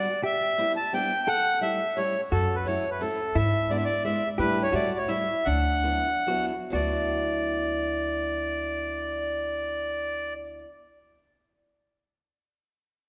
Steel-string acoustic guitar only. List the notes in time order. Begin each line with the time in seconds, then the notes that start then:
0.58 G3 B3 D4 E4
0.93 G3 B3 D4 E4
1.61 G3 A3 C#4 E4
1.97 G3 A3 C#4 E4
2.66 F#3 A3 C#4 E4
3.01 F#3 A3 C#4 E4
3.70 G#3 B3 D4 E4
4.05 G#3 B3 D4 E4
4.39 G3 A3 D4 E4
4.73 G3 A3 C#4 E4
5.08 G3 A3 C#4 E4
5.84 F#3 B3 D4 E4
6.27 F#3 B3 D4 E4
6.70 F#3 B3 D4
6.75 E4